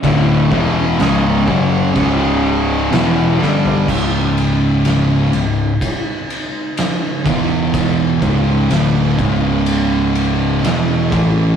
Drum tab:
CC |x---x---x---x---|x---------------|----------------|
RD |----------------|--x-x-x-x-x-x-x-|x-x-x-x-x-x-x-x-|
SD |----o-------o-o-|----o-------o---|----o-------o---|
FT |---------------o|----------------|----------------|
BD |o-o---o-o-------|o-------o-----o-|o-o---o-------o-|